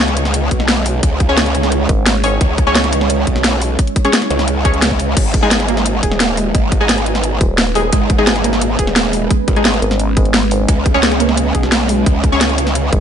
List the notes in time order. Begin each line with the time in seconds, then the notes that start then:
Already playing: C#2 G#3 C#4 E4 C#5
0.08 snare, closed hi-hat
0.17 closed hi-hat
0.25 snare
0.34 closed hi-hat
0.51 B1, kick, closed hi-hat
0.60 snare
0.68 snare, closed hi-hat
0.86 open hi-hat
1.03 C#2, kick, closed hi-hat
1.20 kick, closed hi-hat
1.29 C#4 G#4 C#5
1.37 snare, closed hi-hat
1.46 closed hi-hat
1.55 closed hi-hat
1.63 snare
1.72 closed hi-hat
1.89 G#1, kick, closed hi-hat
2.06 snare, closed hi-hat
2.24 C#4 G#4 C#5, open hi-hat
2.41 C#2, kick, closed hi-hat
2.58 kick, closed hi-hat
2.67 C#4 G#4 C#5, snare
2.75 snare, closed hi-hat
2.84 snare, closed hi-hat
2.93 closed hi-hat
3.01 snare
3.10 closed hi-hat
3.27 B1, kick, closed hi-hat
3.36 snare
3.44 snare, closed hi-hat
3.62 open hi-hat
3.79 kick, closed hi-hat
3.87 closed hi-hat
3.96 kick, closed hi-hat
4.05 C#4 G#4 C#5, snare, closed hi-hat
4.13 snare, closed hi-hat
4.22 snare, closed hi-hat
4.31 C#2, closed hi-hat
4.39 snare
4.48 closed hi-hat
4.65 C#4 G#4 C#5, kick, closed hi-hat
4.74 closed hi-hat
4.82 snare, closed hi-hat
4.91 kick
5.00 open hi-hat
5.17 G#1 G#3 B3 D#4 B4, kick, closed hi-hat, crash
5.34 kick, closed hi-hat
5.43 G#3 D#4 G#4, snare
5.51 G#4, snare, closed hi-hat
5.60 snare, closed hi-hat
5.68 A#3, closed hi-hat
5.77 snare
5.86 closed hi-hat
6.03 D#1 G#4, kick, closed hi-hat
6.12 snare
6.20 A#3, snare, closed hi-hat
6.37 G#3, open hi-hat
6.55 G#1 G#3, kick, closed hi-hat
6.72 kick, closed hi-hat
6.80 G#3 D#4 G#4
6.89 snare, closed hi-hat
6.98 closed hi-hat
7.06 closed hi-hat
7.15 snare
7.24 closed hi-hat
7.41 D#1 G#3, kick, closed hi-hat
7.58 snare, closed hi-hat
7.75 G#3 D#4 G#4, open hi-hat
7.93 G#1 G#3 C#4, kick, closed hi-hat
8.10 kick, closed hi-hat
8.18 G#3 D#4 G#4, snare
8.27 G#4, snare, closed hi-hat
8.36 snare, closed hi-hat
8.44 A#3, closed hi-hat
8.53 snare
8.62 closed hi-hat
8.79 D#1 G#4, kick, closed hi-hat
8.87 snare
8.96 A#3, snare, closed hi-hat
9.13 G#3, open hi-hat
9.31 G#3, kick, closed hi-hat
9.48 G#1, kick, closed hi-hat
9.56 G#3 D#4 G#4, closed hi-hat
9.65 snare, closed hi-hat
9.74 closed hi-hat
9.82 G#1, closed hi-hat
9.91 snare
10.00 closed hi-hat
10.17 G#3, kick, closed hi-hat
10.25 closed hi-hat
10.34 snare, closed hi-hat
10.51 open hi-hat
10.68 C#2 G#3 E4 C#5, kick, closed hi-hat
10.86 kick, closed hi-hat
10.94 C#4 G#4 C#5, snare
11.03 G#4, snare, closed hi-hat
11.12 snare, closed hi-hat
11.20 A#3, closed hi-hat
11.29 snare
11.37 closed hi-hat
11.55 B1 G#4, kick, closed hi-hat
11.63 snare
11.72 A#3, snare, closed hi-hat
11.89 G#3, open hi-hat
12.06 C#2 G#3, kick, closed hi-hat
12.24 kick, closed hi-hat
12.32 C#4 G#4 C#5
12.41 snare, closed hi-hat
12.49 closed hi-hat
12.58 closed hi-hat
12.67 snare
12.75 closed hi-hat
12.93 G#1 G#3, kick, closed hi-hat